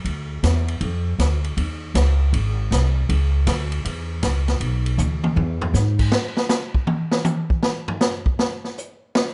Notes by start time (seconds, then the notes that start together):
0.05 D2, ride
0.43 E2, snare, hi-hat pedal, ride
0.68 ride
0.81 F2, ride
1.19 D2, snare, hi-hat pedal, ride
1.44 ride
1.57 D#2, ride
1.94 C#2, snare, hi-hat pedal, ride
2.33 G#1, ride
2.71 C2, snare, hi-hat pedal, ride
3.09 C#2, ride
3.47 D2, snare, hi-hat pedal, ride
3.72 ride
3.85 E2, ride
4.23 C#2, snare, hi-hat pedal, ride
4.48 snare, ride
4.60 B1, ride
4.86 ride
4.98 D2, hi-hat pedal, high tom
5.24 high tom
5.36 E2, floor tom
5.61 floor tom
5.74 G#2, snare, hi-hat pedal
5.99 kick, crash
6.12 snare
6.37 snare
6.49 snare, hi-hat pedal
6.75 kick
6.87 high tom
7.12 snare
7.24 hi-hat pedal, high tom
7.50 kick
7.63 snare
7.88 floor tom
8.01 snare, hi-hat pedal
8.26 kick
8.39 snare
8.64 snare
8.78 hi-hat pedal
9.15 snare